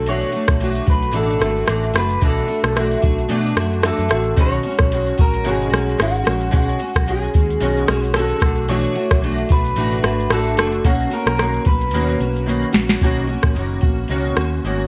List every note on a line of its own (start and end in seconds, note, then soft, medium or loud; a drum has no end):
0.00 0.23 B1 medium
0.06 0.33 B2 medium
0.06 0.34 E3 medium
0.06 0.34 A3 medium
0.06 0.33 D4 medium
0.06 0.31 F#4 medium
0.06 0.84 C#5 loud
0.06 closed hi-hat medium
0.06 shaker medium
0.21 shaker soft
0.32 0.60 A3 medium
0.32 0.61 D4 medium
0.32 0.60 F#4 medium
0.32 closed hi-hat soft
0.32 shaker medium
0.47 0.80 B1 loud
0.47 kick loud
0.47 cross-stick medium
0.47 shaker medium
0.60 0.87 E3 medium
0.60 0.88 A3 medium
0.60 0.87 D4 medium
0.60 0.85 F#4 medium
0.60 closed hi-hat medium
0.60 shaker medium
0.75 shaker medium
0.87 1.09 B1 medium
0.87 1.12 A3 soft
0.87 1.13 D4 soft
0.87 1.13 F#4 soft
0.87 1.16 B4 loud
0.87 kick loud
0.87 closed hi-hat medium
0.87 shaker medium
1.02 shaker medium
1.11 1.36 A1 loud
1.11 1.40 B2 medium
1.11 1.40 E3 medium
1.11 1.41 A3 medium
1.11 1.40 D4 medium
1.11 1.38 F#4 medium
1.11 closed hi-hat medium
1.11 shaker medium
1.16 1.97 A4 medium
1.30 shaker medium
1.39 1.63 G#1 medium
1.39 1.66 A3 soft
1.39 1.67 D4 medium
1.39 1.67 F#4 medium
1.39 cross-stick medium
1.39 closed hi-hat soft
1.39 shaker soft
1.57 shaker soft
1.65 1.90 A1 loud
1.65 1.94 E3 medium
1.65 1.95 A3 medium
1.65 1.95 D4 medium
1.65 1.92 F#4 medium
1.65 cross-stick medium
1.65 closed hi-hat medium
1.65 shaker medium
1.83 shaker soft
1.93 2.16 F#1 medium
1.93 2.21 A3 medium
1.93 2.21 D4 medium
1.93 2.21 F#4 medium
1.93 cross-stick medium
1.93 closed hi-hat soft
1.93 shaker medium
1.98 2.22 B4 medium
2.09 shaker medium
2.21 2.44 B1 loud
2.21 2.48 B2 medium
2.21 2.49 E3 medium
2.21 2.49 A3 medium
2.21 2.48 D4 medium
2.21 2.47 F#4 medium
2.21 3.85 A4 loud
2.21 kick loud
2.21 closed hi-hat medium
2.21 shaker medium
2.38 shaker medium
2.48 2.75 A3 soft
2.48 2.76 D4 medium
2.48 2.76 F#4 medium
2.48 closed hi-hat medium
2.48 shaker medium
2.63 2.95 B1 loud
2.63 cross-stick medium
2.63 shaker medium
2.75 3.02 E3 medium
2.75 3.03 A3 medium
2.75 3.02 D4 medium
2.75 3.00 F#4 medium
2.75 cross-stick medium
2.75 closed hi-hat medium
2.75 shaker medium
2.91 shaker medium
3.01 3.25 B1 medium
3.01 3.28 A3 soft
3.01 3.29 D4 medium
3.01 3.29 F#4 medium
3.01 kick loud
3.01 closed hi-hat soft
3.01 shaker medium
3.19 shaker medium
3.28 3.56 B2 medium
3.28 3.51 B2 loud
3.28 3.57 E3 medium
3.28 3.57 A3 medium
3.28 3.57 D4 loud
3.28 3.54 F#4 medium
3.28 closed hi-hat medium
3.28 shaker medium
3.46 shaker medium
3.55 3.90 F#2 medium
3.55 3.82 A3 soft
3.55 3.83 D4 medium
3.55 3.83 F#4 medium
3.55 cross-stick medium
3.55 closed hi-hat soft
3.55 shaker soft
3.73 shaker soft
3.82 4.10 E3 medium
3.82 4.11 A3 medium
3.82 4.10 D4 medium
3.82 4.08 F#4 medium
3.82 cross-stick medium
3.82 closed hi-hat medium
3.82 shaker medium
3.86 4.40 A4 medium
3.99 4.08 F#2 medium
3.99 shaker soft
4.09 4.32 A1 medium
4.09 4.38 D4 soft
4.09 4.37 F#4 medium
4.09 cross-stick medium
4.09 closed hi-hat soft
4.09 shaker medium
4.13 4.37 A3 soft
4.24 shaker medium
4.36 4.59 B1 loud
4.36 4.64 B2 medium
4.36 4.64 D#3 medium
4.36 4.65 G#3 medium
4.36 4.65 C#4 medium
4.36 4.63 F#4 medium
4.36 kick loud
4.36 closed hi-hat medium
4.36 shaker medium
4.41 5.21 C#5 loud
4.52 shaker soft
4.63 4.92 C#4 medium
4.63 4.91 F#4 medium
4.63 closed hi-hat medium
4.63 shaker medium
4.67 4.91 G#3 soft
4.78 5.11 B1 medium
4.78 kick medium
4.78 cross-stick medium
4.78 shaker medium
4.91 5.18 D#3 medium
4.91 5.19 G#3 medium
4.91 5.18 C#4 medium
4.91 5.17 F#4 medium
4.91 closed hi-hat medium
4.91 shaker medium
5.06 shaker medium
5.18 5.46 A#1 medium
5.18 5.44 G#3 soft
5.18 5.45 C#4 soft
5.18 5.45 F#4 soft
5.18 5.48 A#4 medium
5.18 kick loud
5.18 closed hi-hat soft
5.18 shaker medium
5.33 shaker medium
5.44 5.67 G#1 medium
5.44 5.72 B2 medium
5.44 5.72 D#3 medium
5.44 5.72 G#3 medium
5.44 5.70 C#4 medium
5.44 5.68 F#4 medium
5.44 closed hi-hat medium
5.44 shaker medium
5.48 6.02 G#4 medium
5.62 shaker medium
5.69 5.94 B1 medium
5.69 5.97 G#3 soft
5.69 5.98 C#4 medium
5.69 5.98 F#4 medium
5.74 cross-stick medium
5.74 closed hi-hat medium
5.74 shaker medium
5.89 shaker soft
5.97 6.21 G#1 medium
5.97 6.25 D#3 medium
5.97 6.25 G#3 medium
5.97 6.24 C#4 medium
5.97 6.22 F#4 medium
5.97 cross-stick medium
6.01 6.55 F#4 medium
6.01 closed hi-hat medium
6.01 shaker medium
6.16 shaker soft
6.23 6.51 G#3 soft
6.23 6.51 C#4 soft
6.23 6.52 F#4 medium
6.23 cross-stick medium
6.23 closed hi-hat medium
6.23 shaker medium
6.28 6.49 A#1 medium
6.41 shaker medium
6.51 6.75 B1 loud
6.51 6.79 B2 medium
6.51 6.79 D#3 medium
6.51 6.80 G#3 medium
6.51 6.80 C#4 medium
6.51 6.77 F#4 medium
6.51 kick loud
6.51 closed hi-hat medium
6.51 shaker medium
6.56 7.09 F#4 medium
6.69 shaker medium
6.79 7.07 C#4 medium
6.79 7.06 F#4 medium
6.79 closed hi-hat medium
6.79 shaker medium
6.83 7.06 G#3 soft
6.96 7.27 B1 medium
6.96 kick medium
6.96 cross-stick medium
6.96 shaker medium
7.06 7.34 D#3 medium
7.06 7.34 G#3 medium
7.06 7.34 C#4 medium
7.06 7.32 F#4 medium
7.06 8.20 G#4 medium
7.06 closed hi-hat medium
7.06 shaker medium
7.23 shaker medium
7.34 7.56 D#2 medium
7.34 7.60 G#3 soft
7.34 7.60 C#4 soft
7.34 7.61 F#4 soft
7.34 kick loud
7.34 closed hi-hat medium
7.34 shaker medium
7.50 shaker medium
7.60 7.83 B1 medium
7.60 7.88 B2 medium
7.60 7.88 D#3 medium
7.60 7.88 G#3 medium
7.60 7.88 C#4 medium
7.60 7.87 F#4 medium
7.60 closed hi-hat medium
7.60 shaker medium
7.77 shaker medium
7.88 8.32 B1 medium
7.88 8.15 G#3 soft
7.88 8.16 C#4 medium
7.88 8.15 F#4 medium
7.88 cross-stick medium
7.88 closed hi-hat soft
7.88 shaker soft
8.04 shaker soft
8.14 8.42 D#3 medium
8.14 8.43 G#3 medium
8.14 8.43 C#4 medium
8.14 8.69 A4 medium
8.14 cross-stick medium
8.14 closed hi-hat medium
8.14 shaker medium
8.19 8.41 F#4 medium
8.29 shaker soft
8.40 8.85 B1 loud
8.40 8.69 F#4 medium
8.40 kick loud
8.40 cross-stick medium
8.40 closed hi-hat medium
8.40 shaker medium
8.45 8.68 A3 soft
8.45 8.69 D4 medium
8.56 shaker medium
8.68 8.96 B2 medium
8.68 8.96 E3 medium
8.68 8.96 A3 medium
8.68 8.96 D4 medium
8.68 8.94 F#4 loud
8.68 9.19 C#5 medium
8.68 closed hi-hat medium
8.68 shaker medium
8.84 shaker medium
8.95 9.22 A3 soft
8.95 9.23 D4 medium
8.95 9.23 F#4 medium
8.95 closed hi-hat medium
8.95 shaker medium
9.11 9.43 B1 loud
9.11 kick loud
9.11 cross-stick medium
9.11 shaker medium
9.21 9.49 E3 medium
9.21 9.50 A3 medium
9.21 9.51 D4 medium
9.21 9.49 F#4 medium
9.21 closed hi-hat medium
9.21 shaker medium
9.38 shaker medium
9.49 9.72 B1 loud
9.49 9.76 D4 soft
9.49 9.77 F#4 medium
9.49 10.32 B4 loud
9.49 kick loud
9.49 closed hi-hat medium
9.49 shaker medium
9.54 9.76 A3 soft
9.65 shaker medium
9.75 9.98 A1 medium
9.75 10.03 B2 medium
9.75 10.04 E3 medium
9.75 10.04 A3 medium
9.75 10.04 D4 medium
9.75 10.01 F#4 medium
9.75 closed hi-hat medium
9.75 shaker medium
9.93 shaker medium
10.02 10.26 G#1 medium
10.02 10.30 A3 soft
10.02 10.31 D4 soft
10.02 10.30 F#4 medium
10.02 cross-stick medium
10.02 closed hi-hat soft
10.02 shaker medium
10.20 shaker soft
10.30 10.58 A1 loud
10.30 10.58 E3 medium
10.30 10.58 A3 medium
10.30 10.58 D4 medium
10.30 10.56 F#4 medium
10.30 10.87 A4 loud
10.30 cross-stick medium
10.30 closed hi-hat medium
10.30 shaker medium
10.46 shaker soft
10.57 10.80 F#1 medium
10.57 10.85 A3 soft
10.57 10.85 D4 medium
10.57 10.85 F#4 medium
10.57 cross-stick medium
10.57 closed hi-hat medium
10.57 shaker medium
10.72 shaker medium
10.84 11.06 B1 loud
10.84 11.12 B2 medium
10.84 11.12 D#3 medium
10.84 11.11 A#3 medium
10.84 11.10 C#4 medium
10.84 11.13 F#4 loud
10.84 11.08 F#4 medium
10.84 kick loud
10.84 closed hi-hat medium
10.84 shaker medium
11.00 shaker soft
11.09 11.39 A#3 soft
11.09 11.39 C#4 medium
11.09 11.38 F#4 medium
11.09 11.66 A#4 loud
11.09 closed hi-hat medium
11.09 shaker soft
11.26 11.58 B1 loud
11.26 cross-stick medium
11.26 shaker medium
11.38 11.66 D#3 medium
11.38 11.67 A#3 medium
11.38 11.66 C#4 medium
11.38 11.64 F#4 medium
11.38 cross-stick medium
11.38 closed hi-hat medium
11.38 shaker medium
11.54 shaker medium
11.65 11.93 B1 medium
11.65 11.93 C#4 soft
11.65 11.93 F#4 soft
11.65 12.71 B4 medium
11.65 kick loud
11.65 closed hi-hat medium
11.65 shaker medium
11.69 11.93 A#3 soft
11.81 shaker medium
11.91 12.14 D#2 medium
11.91 12.20 B2 medium
11.91 12.20 D#3 medium
11.91 12.21 A#3 medium
11.91 12.20 C#4 loud
11.91 12.17 F#4 medium
11.91 closed hi-hat medium
11.91 shaker medium
12.09 shaker medium
12.19 12.63 B1 medium
12.19 12.46 A#3 soft
12.19 12.48 C#4 medium
12.19 12.46 F#4 medium
12.19 closed hi-hat soft
12.19 shaker medium
12.36 shaker soft
12.46 12.74 D#3 medium
12.46 12.74 A#3 medium
12.46 12.73 C#4 medium
12.46 12.72 F#4 medium
12.46 closed hi-hat medium
12.46 shaker medium
12.62 shaker soft
12.73 12.96 A#1 medium
12.73 13.01 A#3 medium
12.73 13.01 C#4 medium
12.73 13.01 F#4 medium
12.73 snare loud
12.73 closed hi-hat medium
12.73 shaker medium
12.88 snare medium
12.88 shaker medium
13.01 13.35 B1 medium
13.01 13.29 B2 medium
13.01 13.29 D#3 medium
13.01 13.29 A#3 loud
13.01 13.29 C#4 medium
13.01 13.27 F#4 medium
13.01 kick loud
13.01 closed hi-hat medium
13.27 13.56 C#4 medium
13.27 13.55 F#4 medium
13.27 closed hi-hat soft
13.32 13.55 A#3 medium
13.43 13.53 A#1 medium
13.43 kick medium
13.43 cross-stick medium
13.55 13.77 F#1 medium
13.55 13.82 D#3 medium
13.55 13.83 A#3 medium
13.55 13.82 C#4 medium
13.55 closed hi-hat medium
13.59 13.80 F#4 medium
13.81 14.04 A#1 medium
13.81 14.09 A#3 soft
13.81 14.10 C#4 medium
13.81 14.09 F#4 medium
13.81 kick medium
13.81 closed hi-hat soft
14.08 14.31 C#2 medium
14.08 14.36 B2 medium
14.08 14.36 D#3 medium
14.08 14.37 A#3 medium
14.08 14.36 C#4 loud
14.08 14.34 F#4 loud
14.08 closed hi-hat medium
14.35 14.58 D#2 medium
14.35 14.64 A#3 soft
14.35 14.64 C#4 medium
14.35 14.63 F#4 medium
14.35 cross-stick medium
14.35 closed hi-hat soft
14.64 14.86 G#1 medium
14.64 14.87 D#3 medium
14.64 14.87 A#3 medium
14.64 14.87 C#4 medium
14.64 14.87 F#4 medium
14.64 closed hi-hat medium